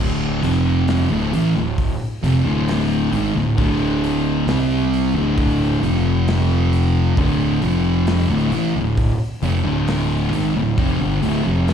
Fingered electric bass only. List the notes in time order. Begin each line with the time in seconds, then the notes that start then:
Already playing: D1
0.44 F1
1.12 D1
1.33 A1
1.56 D1
2.23 F1
2.45 D1
3.12 G#1
3.35 D1
3.58 D1
4.46 C2
5.14 D1
5.83 F1
7.17 D1
7.62 F1
8.30 D1
8.52 A1
8.75 D1
9.42 F1
9.64 D1
10.32 G#1
10.56 D1
10.78 F1
11.00 G1
11.24 D1
11.46 F1